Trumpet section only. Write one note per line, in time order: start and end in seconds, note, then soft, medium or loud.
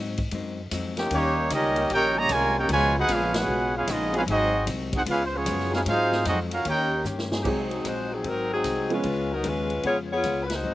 1.14 1.50 A#3 medium
1.14 1.50 D#4 medium
1.14 1.50 G4 medium
1.14 1.50 C#5 loud
1.53 1.89 C#4 medium
1.53 1.89 G4 medium
1.53 1.89 A#4 medium
1.53 1.89 D#5 medium
1.93 2.16 D#4 medium
1.93 2.16 A#4 loud
1.93 2.16 C#5 medium
1.93 2.16 G5 loud
2.18 2.31 G4 medium
2.18 2.31 C#5 medium
2.18 2.31 D#5 medium
2.18 2.31 A#5 loud
2.32 2.57 F4 loud
2.32 2.57 A#4 loud
2.32 2.57 C#5 medium
2.32 2.57 G#5 loud
2.58 2.70 D#4 medium
2.58 2.70 A#4 medium
2.58 2.70 C#5 medium
2.58 2.70 G5 medium
2.72 2.95 F4 loud
2.72 2.95 B4 medium
2.72 2.95 C#5 loud
2.72 2.95 G#5 loud
2.99 3.11 D#4 medium
2.99 3.11 G#4 loud
2.99 3.11 B4 medium
2.99 3.11 F#5 loud
3.13 3.36 C#4 medium
3.13 3.37 G#4 medium
3.13 3.37 B4 medium
3.13 3.37 F5 loud
3.37 3.76 C#4 medium
3.37 3.76 G#4 medium
3.37 3.76 B4 medium
3.37 3.76 F#5 medium
3.77 3.89 C#4 medium
3.77 3.88 G#4 medium
3.77 3.89 B4 medium
3.77 3.89 F5 medium
3.91 4.15 B3 medium
3.91 4.15 F4 medium
3.91 4.15 G#4 medium
3.91 4.15 D#5 loud
4.18 4.23 C#4 medium
4.18 4.23 G#4 medium
4.18 4.23 B4 medium
4.18 4.23 F5 medium
4.30 4.66 C4 medium
4.30 4.66 F#4 medium
4.30 4.66 G#4 medium
4.30 4.66 D#5 loud
4.96 5.02 D#4 medium
4.96 5.02 G#4 medium
4.96 5.02 C5 medium
4.96 5.02 F#5 medium
5.10 5.24 C#4 medium
5.10 5.24 G#4 medium
5.10 5.24 B4 medium
5.10 5.24 F5 loud
5.26 5.34 C5 medium
5.37 5.74 B3 medium
5.37 5.75 F4 medium
5.37 5.74 G#4 medium
5.37 5.75 C#5 medium
5.75 5.81 C#4 medium
5.75 5.81 G#4 medium
5.75 5.81 B4 medium
5.75 5.81 F5 medium
5.89 6.25 D#4 medium
5.89 6.25 G#4 medium
5.89 6.25 C5 medium
5.89 6.25 F5 medium
6.28 6.39 C4 medium
6.28 6.39 F#4 medium
6.28 6.39 G#4 medium
6.28 6.39 D#5 medium
6.53 6.65 C#4 medium
6.53 6.65 F#4 medium
6.53 6.65 A#4 medium
6.53 6.66 F5 medium
6.68 7.04 D#4 medium
6.68 7.04 A#4 medium
6.68 7.04 C#5 medium
6.68 7.04 G5 medium